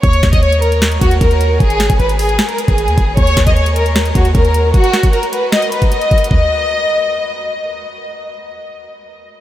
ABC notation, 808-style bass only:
X:1
M:4/4
L:1/16
Q:1/4=153
K:Ebm
V:1 name="808-style bass" clef=bass
E,,2 E,,8 E,,2 E,,4 | A,,,3 A,,, A,,,4 z3 A,,,2 E,, A,,,2 | E,,2 E,,8 E,,2 E,,4 | z16 |
z16 | z16 |]